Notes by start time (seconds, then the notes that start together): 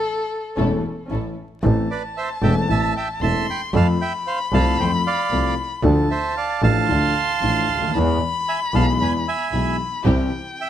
Already playing: A4
0.57 E1 E2 E3 A3 C#4 E4 A4
1.10 A1 A2 C#4 E4 A4
1.63 A1 A2 E3 A3 C4 A4 A5
1.91 B4 D5
2.17 C5 E5
2.42 E1 E2 E3 A3 C4 A4 E5 G5
2.68 A1 A2 E3 A3 C4 E5 A5
2.96 E5 G5
3.21 E1 E2 E3 A3 C4 A4 E5 A5 C6
3.50 G5 B5
3.73 F2 F3 A3 C4 A4 F5 A5 B5
4.01 E5 G5
4.27 C5 F5
4.52 C2 C3 F3 A3 C4 A4 F5 A5
4.78 F2 F3 A3 C4 A4 C5 G5
5.07 D5 F5
5.31 C2 C3 F3 A3 C4 A4
5.83 D2 D3 F3 A3 D4 A4 A5
6.11 C5 E5
6.37 D5 F5
6.62 A1 A2 F3 A3 D4 A4 F5 A5
6.87 D2 D3 F3 A3 D4 A4 C6
7.41 A1 A2 F3 A3 D4 A4
7.68 D2
7.75 C#2
7.82 D2
7.88 D#2
7.94 E2 E3 G#3 B3 G#4 B5
8.48 E5 G#5
8.74 B1 B2 E3 G#3 B3 G#4 F5 A5
8.99 E2 E3 G#3 B3 G#4 G#5 B5
9.28 E5 G#5
9.51 B1 B2 E3 G#3 B3 G#4 B5
10.05 C2 C3 E3 G3 C4 E4 G4 G5
10.60 E5 G5